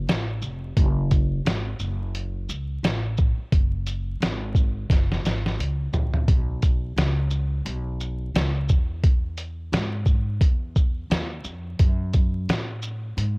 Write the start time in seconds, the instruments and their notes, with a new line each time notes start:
0.07 upright bass A1, snare, closed hi-hat
0.42 upright bass F1, shaker
0.77 upright bass F#1, kick, closed hi-hat
1.11 kick, closed hi-hat, shaker
1.45 upright bass G#1, snare, closed hi-hat
1.79 upright bass F#1, shaker
2.15 closed hi-hat
2.49 upright bass C#2, shaker
2.83 upright bass A1, snare, closed hi-hat
3.17 kick, shaker
3.37 muted upright bass stroke
3.52 upright bass F#1, kick, closed hi-hat
3.87 closed hi-hat, shaker
4.20 upright bass G#1, snare, closed hi-hat
4.55 kick, shaker
4.90 upright bass F#1, kick, snare, closed hi-hat
5.12 snare
5.24 upright bass G#1, snare, closed hi-hat, shaker
5.46 snare
5.59 upright bass C#2, closed hi-hat
5.93 upright bass A#1, floor tom, shaker
6.14 floor tom
6.28 upright bass B1, kick, closed hi-hat
6.62 kick, closed hi-hat, shaker
6.96 upright bass C#2, snare, closed hi-hat
7.31 shaker
7.65 upright bass B1, closed hi-hat
8.00 shaker
8.34 upright bass C#2, snare, closed hi-hat
8.69 upright bass E2, kick, shaker
9.04 kick, closed hi-hat
9.38 closed hi-hat, shaker
9.72 upright bass G#2, snare, closed hi-hat
10.06 kick, shaker
10.41 upright bass E2, kick, closed hi-hat
10.76 kick, shaker
11.10 upright bass D#2, snare, closed hi-hat
11.44 upright bass F2, shaker
11.79 upright bass F#2, kick, closed hi-hat
12.13 kick, closed hi-hat, shaker
12.48 upright bass A2, snare, closed hi-hat
12.82 shaker
13.17 upright bass G#2, closed hi-hat